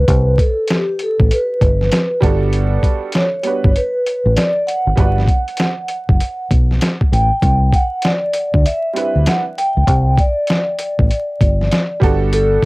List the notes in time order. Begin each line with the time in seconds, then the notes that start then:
Already playing: B4
0.08 C2, kick, closed hi-hat
0.38 A4, kick, closed hi-hat
0.68 G4, snare, closed hi-hat
0.99 A4, closed hi-hat
1.20 A1, kick
1.31 B4, closed hi-hat
1.61 G1, kick, closed hi-hat
1.81 snare
1.92 snare, closed hi-hat
2.21 G1 G3 B3 D4 F#4 A4, kick, closed hi-hat
2.53 closed hi-hat
2.83 kick, closed hi-hat
3.12 C#5, snare, closed hi-hat
3.43 G3 B3 D4 F#4 B4, closed hi-hat
3.64 G1, kick
3.76 B4, closed hi-hat
4.06 closed hi-hat
4.25 A1
4.36 D5, snare, closed hi-hat
4.67 F#5, closed hi-hat
4.87 G#1
4.95 G1 G3 B3 D4 F#4 B4, kick, closed hi-hat
5.18 snare
5.28 kick, closed hi-hat
5.48 closed hi-hat
5.57 snare, closed hi-hat
5.88 closed hi-hat
6.09 F#1, kick
6.20 closed hi-hat
6.51 B1, kick, closed hi-hat
6.71 snare
6.81 snare, closed hi-hat
7.01 kick
7.12 A1 G5, closed hi-hat
7.42 C2, kick, closed hi-hat
7.72 F#5, kick, closed hi-hat
8.02 D5, snare, closed hi-hat
8.33 closed hi-hat
8.54 D2, kick
8.66 E5, closed hi-hat
8.93 G3 C4 D4 E4 B4, closed hi-hat
9.15 D2
9.26 F#5, snare, closed hi-hat
9.58 G5, closed hi-hat
9.77 C#2
9.87 C2, kick, closed hi-hat
10.18 D5, kick, closed hi-hat
10.47 snare, closed hi-hat
10.79 closed hi-hat
10.99 A1, kick
11.11 closed hi-hat
11.41 G1, kick, closed hi-hat
11.61 snare
11.72 snare, closed hi-hat
12.00 G1 G3 B3 D4 F#4, kick, closed hi-hat
12.04 A4
12.33 A4, closed hi-hat